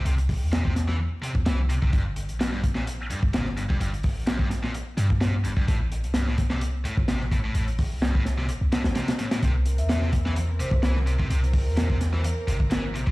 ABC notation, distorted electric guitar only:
X:1
M:4/4
L:1/16
Q:"Swing 16ths" 1/4=128
K:Cmix
V:1 name="Distorted electric guitar" clef=bass
C, z3 B,, C, z E, z2 C, z E, z C, C, | G,, z3 F,, G,, z B,, z2 G,, z B,, z G,, G,, | G,, z3 F,, G,, z B,, z2 G,, z B,, z G,, G,, | A,, z3 G,, A,, z C, z2 A,, z C, z A,, A,, |
A,, z3 G,, A,, z C, z2 A,, z C, z A,, A,, | C, z3 B,, C, z E, z2 C, z E, z C, C, | C, z3 B,, C, z E, z2 C, z E, z C, C, |]